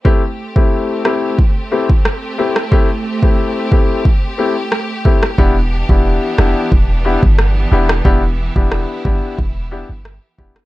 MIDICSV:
0, 0, Header, 1, 5, 480
1, 0, Start_track
1, 0, Key_signature, 0, "minor"
1, 0, Tempo, 666667
1, 37, Time_signature, 4, 2, 24, 8
1, 7669, End_track
2, 0, Start_track
2, 0, Title_t, "Grand piano"
2, 0, Program_c, 0, 0
2, 34, Note_on_c, 0, 57, 89
2, 35, Note_on_c, 0, 60, 79
2, 37, Note_on_c, 0, 64, 78
2, 38, Note_on_c, 0, 67, 97
2, 148, Note_off_c, 0, 57, 0
2, 148, Note_off_c, 0, 60, 0
2, 149, Note_off_c, 0, 64, 0
2, 150, Note_off_c, 0, 67, 0
2, 401, Note_on_c, 0, 57, 70
2, 403, Note_on_c, 0, 60, 64
2, 404, Note_on_c, 0, 64, 65
2, 406, Note_on_c, 0, 67, 75
2, 728, Note_off_c, 0, 57, 0
2, 729, Note_off_c, 0, 60, 0
2, 730, Note_off_c, 0, 64, 0
2, 731, Note_off_c, 0, 67, 0
2, 754, Note_on_c, 0, 57, 70
2, 756, Note_on_c, 0, 60, 65
2, 757, Note_on_c, 0, 64, 66
2, 758, Note_on_c, 0, 67, 82
2, 977, Note_off_c, 0, 57, 0
2, 978, Note_off_c, 0, 60, 0
2, 979, Note_off_c, 0, 64, 0
2, 979, Note_off_c, 0, 67, 0
2, 1235, Note_on_c, 0, 57, 75
2, 1236, Note_on_c, 0, 60, 69
2, 1237, Note_on_c, 0, 64, 67
2, 1239, Note_on_c, 0, 67, 83
2, 1348, Note_off_c, 0, 57, 0
2, 1349, Note_off_c, 0, 60, 0
2, 1349, Note_off_c, 0, 64, 0
2, 1350, Note_off_c, 0, 67, 0
2, 1715, Note_on_c, 0, 57, 76
2, 1716, Note_on_c, 0, 60, 70
2, 1717, Note_on_c, 0, 64, 68
2, 1719, Note_on_c, 0, 67, 81
2, 1828, Note_off_c, 0, 57, 0
2, 1829, Note_off_c, 0, 60, 0
2, 1829, Note_off_c, 0, 64, 0
2, 1830, Note_off_c, 0, 67, 0
2, 1955, Note_on_c, 0, 57, 93
2, 1956, Note_on_c, 0, 60, 80
2, 1958, Note_on_c, 0, 64, 85
2, 1959, Note_on_c, 0, 67, 98
2, 2068, Note_off_c, 0, 57, 0
2, 2069, Note_off_c, 0, 60, 0
2, 2069, Note_off_c, 0, 64, 0
2, 2070, Note_off_c, 0, 67, 0
2, 2322, Note_on_c, 0, 57, 71
2, 2323, Note_on_c, 0, 60, 66
2, 2324, Note_on_c, 0, 64, 64
2, 2326, Note_on_c, 0, 67, 78
2, 2648, Note_off_c, 0, 57, 0
2, 2649, Note_off_c, 0, 60, 0
2, 2650, Note_off_c, 0, 64, 0
2, 2651, Note_off_c, 0, 67, 0
2, 2674, Note_on_c, 0, 57, 71
2, 2675, Note_on_c, 0, 60, 68
2, 2677, Note_on_c, 0, 64, 66
2, 2678, Note_on_c, 0, 67, 83
2, 2897, Note_off_c, 0, 57, 0
2, 2898, Note_off_c, 0, 60, 0
2, 2899, Note_off_c, 0, 64, 0
2, 2899, Note_off_c, 0, 67, 0
2, 3154, Note_on_c, 0, 57, 77
2, 3156, Note_on_c, 0, 60, 67
2, 3157, Note_on_c, 0, 64, 69
2, 3159, Note_on_c, 0, 67, 79
2, 3268, Note_off_c, 0, 57, 0
2, 3269, Note_off_c, 0, 60, 0
2, 3269, Note_off_c, 0, 64, 0
2, 3270, Note_off_c, 0, 67, 0
2, 3635, Note_on_c, 0, 57, 76
2, 3637, Note_on_c, 0, 60, 72
2, 3638, Note_on_c, 0, 64, 70
2, 3639, Note_on_c, 0, 67, 83
2, 3748, Note_off_c, 0, 57, 0
2, 3749, Note_off_c, 0, 60, 0
2, 3750, Note_off_c, 0, 64, 0
2, 3750, Note_off_c, 0, 67, 0
2, 3874, Note_on_c, 0, 59, 92
2, 3876, Note_on_c, 0, 62, 85
2, 3877, Note_on_c, 0, 64, 82
2, 3878, Note_on_c, 0, 67, 96
2, 3988, Note_off_c, 0, 59, 0
2, 3989, Note_off_c, 0, 62, 0
2, 3989, Note_off_c, 0, 64, 0
2, 3990, Note_off_c, 0, 67, 0
2, 4242, Note_on_c, 0, 59, 70
2, 4243, Note_on_c, 0, 62, 65
2, 4244, Note_on_c, 0, 64, 65
2, 4246, Note_on_c, 0, 67, 81
2, 4568, Note_off_c, 0, 59, 0
2, 4569, Note_off_c, 0, 62, 0
2, 4570, Note_off_c, 0, 64, 0
2, 4570, Note_off_c, 0, 67, 0
2, 4594, Note_on_c, 0, 59, 74
2, 4595, Note_on_c, 0, 62, 67
2, 4597, Note_on_c, 0, 64, 68
2, 4598, Note_on_c, 0, 67, 79
2, 4817, Note_off_c, 0, 59, 0
2, 4818, Note_off_c, 0, 62, 0
2, 4819, Note_off_c, 0, 64, 0
2, 4819, Note_off_c, 0, 67, 0
2, 5073, Note_on_c, 0, 59, 75
2, 5075, Note_on_c, 0, 62, 67
2, 5076, Note_on_c, 0, 64, 68
2, 5078, Note_on_c, 0, 67, 83
2, 5187, Note_off_c, 0, 59, 0
2, 5188, Note_off_c, 0, 62, 0
2, 5189, Note_off_c, 0, 64, 0
2, 5190, Note_off_c, 0, 67, 0
2, 5554, Note_on_c, 0, 59, 78
2, 5555, Note_on_c, 0, 62, 67
2, 5556, Note_on_c, 0, 64, 71
2, 5558, Note_on_c, 0, 67, 86
2, 5668, Note_off_c, 0, 59, 0
2, 5668, Note_off_c, 0, 62, 0
2, 5669, Note_off_c, 0, 64, 0
2, 5669, Note_off_c, 0, 67, 0
2, 5794, Note_on_c, 0, 59, 90
2, 5796, Note_on_c, 0, 62, 81
2, 5797, Note_on_c, 0, 64, 83
2, 5799, Note_on_c, 0, 67, 95
2, 5908, Note_off_c, 0, 59, 0
2, 5908, Note_off_c, 0, 62, 0
2, 5909, Note_off_c, 0, 64, 0
2, 5910, Note_off_c, 0, 67, 0
2, 6162, Note_on_c, 0, 59, 71
2, 6163, Note_on_c, 0, 62, 64
2, 6164, Note_on_c, 0, 64, 63
2, 6166, Note_on_c, 0, 67, 81
2, 6488, Note_off_c, 0, 59, 0
2, 6489, Note_off_c, 0, 62, 0
2, 6490, Note_off_c, 0, 64, 0
2, 6490, Note_off_c, 0, 67, 0
2, 6514, Note_on_c, 0, 59, 74
2, 6516, Note_on_c, 0, 62, 69
2, 6518, Note_on_c, 0, 64, 66
2, 6519, Note_on_c, 0, 67, 83
2, 6738, Note_off_c, 0, 59, 0
2, 6738, Note_off_c, 0, 62, 0
2, 6739, Note_off_c, 0, 64, 0
2, 6740, Note_off_c, 0, 67, 0
2, 6994, Note_on_c, 0, 59, 76
2, 6995, Note_on_c, 0, 62, 67
2, 6997, Note_on_c, 0, 64, 66
2, 6998, Note_on_c, 0, 67, 83
2, 7108, Note_off_c, 0, 59, 0
2, 7108, Note_off_c, 0, 62, 0
2, 7109, Note_off_c, 0, 64, 0
2, 7110, Note_off_c, 0, 67, 0
2, 7474, Note_on_c, 0, 59, 71
2, 7475, Note_on_c, 0, 62, 69
2, 7477, Note_on_c, 0, 64, 66
2, 7478, Note_on_c, 0, 67, 85
2, 7588, Note_off_c, 0, 59, 0
2, 7588, Note_off_c, 0, 62, 0
2, 7589, Note_off_c, 0, 64, 0
2, 7590, Note_off_c, 0, 67, 0
2, 7669, End_track
3, 0, Start_track
3, 0, Title_t, "String section"
3, 0, Program_c, 1, 48
3, 38, Note_on_c, 1, 57, 71
3, 38, Note_on_c, 1, 60, 66
3, 38, Note_on_c, 1, 67, 82
3, 3848, Note_off_c, 1, 57, 0
3, 3848, Note_off_c, 1, 60, 0
3, 3877, Note_on_c, 1, 52, 70
3, 3877, Note_on_c, 1, 59, 66
3, 3877, Note_on_c, 1, 62, 64
3, 5777, Note_off_c, 1, 62, 0
3, 5796, Note_on_c, 1, 64, 64
3, 7669, Note_off_c, 1, 52, 0
3, 7669, Note_off_c, 1, 59, 0
3, 7669, Note_off_c, 1, 64, 0
3, 7669, Note_off_c, 1, 67, 0
3, 7669, End_track
4, 0, Start_track
4, 0, Title_t, "808-style bass"
4, 0, Program_c, 2, 38
4, 3876, Note_on_c, 2, 28, 96
4, 4201, Note_off_c, 2, 28, 0
4, 4243, Note_on_c, 2, 28, 96
4, 4456, Note_off_c, 2, 28, 0
4, 4597, Note_on_c, 2, 29, 93
4, 4709, Note_off_c, 2, 29, 0
4, 4837, Note_on_c, 2, 28, 102
4, 5162, Note_off_c, 2, 28, 0
4, 5204, Note_on_c, 2, 31, 92
4, 5516, Note_off_c, 2, 31, 0
4, 5556, Note_on_c, 2, 28, 93
4, 5769, Note_off_c, 2, 28, 0
4, 5796, Note_on_c, 2, 28, 111
4, 6121, Note_off_c, 2, 28, 0
4, 6163, Note_on_c, 2, 28, 97
4, 6376, Note_off_c, 2, 28, 0
4, 6517, Note_on_c, 2, 31, 82
4, 6629, Note_off_c, 2, 31, 0
4, 6757, Note_on_c, 2, 28, 95
4, 7082, Note_off_c, 2, 28, 0
4, 7123, Note_on_c, 2, 31, 78
4, 7336, Note_off_c, 2, 31, 0
4, 7477, Note_on_c, 2, 28, 90
4, 7589, Note_off_c, 2, 28, 0
4, 7669, End_track
5, 0, Start_track
5, 0, Title_t, "Drums"
5, 36, Note_on_c, 9, 36, 100
5, 108, Note_off_c, 9, 36, 0
5, 403, Note_on_c, 9, 36, 90
5, 475, Note_off_c, 9, 36, 0
5, 756, Note_on_c, 9, 37, 86
5, 828, Note_off_c, 9, 37, 0
5, 997, Note_on_c, 9, 36, 93
5, 1069, Note_off_c, 9, 36, 0
5, 1364, Note_on_c, 9, 36, 95
5, 1436, Note_off_c, 9, 36, 0
5, 1478, Note_on_c, 9, 37, 93
5, 1550, Note_off_c, 9, 37, 0
5, 1843, Note_on_c, 9, 37, 93
5, 1915, Note_off_c, 9, 37, 0
5, 1957, Note_on_c, 9, 36, 104
5, 2029, Note_off_c, 9, 36, 0
5, 2323, Note_on_c, 9, 36, 90
5, 2395, Note_off_c, 9, 36, 0
5, 2676, Note_on_c, 9, 36, 96
5, 2748, Note_off_c, 9, 36, 0
5, 2918, Note_on_c, 9, 36, 92
5, 2990, Note_off_c, 9, 36, 0
5, 3397, Note_on_c, 9, 37, 90
5, 3469, Note_off_c, 9, 37, 0
5, 3637, Note_on_c, 9, 36, 93
5, 3709, Note_off_c, 9, 36, 0
5, 3763, Note_on_c, 9, 37, 94
5, 3835, Note_off_c, 9, 37, 0
5, 3876, Note_on_c, 9, 36, 103
5, 3948, Note_off_c, 9, 36, 0
5, 4243, Note_on_c, 9, 36, 90
5, 4315, Note_off_c, 9, 36, 0
5, 4596, Note_on_c, 9, 37, 87
5, 4668, Note_off_c, 9, 37, 0
5, 4837, Note_on_c, 9, 36, 97
5, 4909, Note_off_c, 9, 36, 0
5, 5204, Note_on_c, 9, 36, 99
5, 5276, Note_off_c, 9, 36, 0
5, 5317, Note_on_c, 9, 37, 90
5, 5389, Note_off_c, 9, 37, 0
5, 5683, Note_on_c, 9, 37, 97
5, 5755, Note_off_c, 9, 37, 0
5, 5796, Note_on_c, 9, 36, 103
5, 5868, Note_off_c, 9, 36, 0
5, 6163, Note_on_c, 9, 36, 91
5, 6235, Note_off_c, 9, 36, 0
5, 6275, Note_on_c, 9, 37, 88
5, 6347, Note_off_c, 9, 37, 0
5, 6516, Note_on_c, 9, 36, 99
5, 6588, Note_off_c, 9, 36, 0
5, 6757, Note_on_c, 9, 36, 91
5, 6829, Note_off_c, 9, 36, 0
5, 7237, Note_on_c, 9, 37, 86
5, 7309, Note_off_c, 9, 37, 0
5, 7477, Note_on_c, 9, 36, 92
5, 7549, Note_off_c, 9, 36, 0
5, 7602, Note_on_c, 9, 37, 99
5, 7669, Note_off_c, 9, 37, 0
5, 7669, End_track
0, 0, End_of_file